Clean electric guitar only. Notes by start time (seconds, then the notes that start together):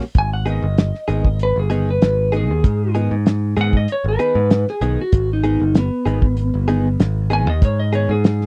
0.46 D#3 B3 D#4 G#4
1.08 D#3 B3 D#4 G#4
1.70 D#3 B3 D#4 G#4
2.32 D#3 B3 D#4 G#4
2.95 D#3 B3 D#4 G#4
3.57 D#3 B3 D#4 G#4
4.19 D#3 B3 D#4 G#4
4.82 D#3 B3 D#4 G#4
5.44 D#3 B3 D#4 G#4
6.06 D#3 B3 D#4 G#4
6.68 D#3 B3 D#4 G#4
7.30 D#3 B3 D#4 G#4
7.93 D#3 B3 D#4 G#4